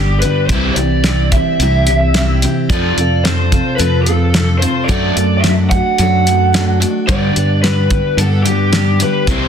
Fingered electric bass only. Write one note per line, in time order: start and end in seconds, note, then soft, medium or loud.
0.00 0.24 G1 medium
0.49 0.70 C2 medium
0.76 1.40 C2 medium
1.59 2.45 C2 medium
2.69 2.91 F2 medium
2.97 3.61 F2 medium
3.79 4.64 F2 medium
4.89 5.10 F#2 medium
5.16 5.80 F#2 medium
5.99 6.84 F#2 medium
7.09 7.30 G2 medium
7.36 8.00 G2 medium
8.17 9.02 G2 medium
9.27 9.48 C2 loud